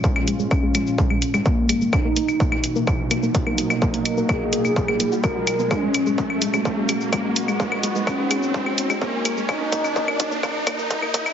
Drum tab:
HH |--x---x---x---x-|--x---x---x-x-x-|-xx---x---x---x-|--x---x---x-x-x-|
SH |x-xxx-xxx-xxx-xx|x-xxx-xxx-xxx-xx|x-xxx-xxx-xxx-xx|x-xxx-xxx-xxx-xx|
CL |-x--x-x--x-x--x-|x--x-x--x-x--x-x|--x-x--x-x--x-x-|x-x--x-x--x-x--x|
T2 |-o----o----o----|o----o----o----o|----o----o----o-|--o----o----o---|
BD |o---o---o---o---|o---o---o---o---|o---o---o---o---|o---o---o---o---|

HH |--x---x---x---x-|--x---x---x-x-x-|
SH |x-xxx-xxx-xxx-xx|x-xxx-xxx-xxx-xx|
CL |-x--x-x--x-x--x-|x--x-x--x-x--x-x|
T2 |-o----o----o----|o----o----o----o|
BD |o---o---o---o---|o-o-o-o-o-o-o-o-|